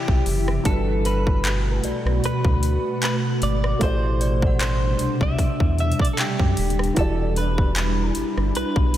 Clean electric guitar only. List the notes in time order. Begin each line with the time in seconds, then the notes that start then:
Already playing: G4
0.66 A4
1.06 B4
2.25 B4
3.05 B4
3.43 D5
3.83 C5
4.62 C5
5.23 E5
5.80 E5
6.02 D5
6.13 A4
6.20 G4
6.99 A4
7.38 B4
8.57 B4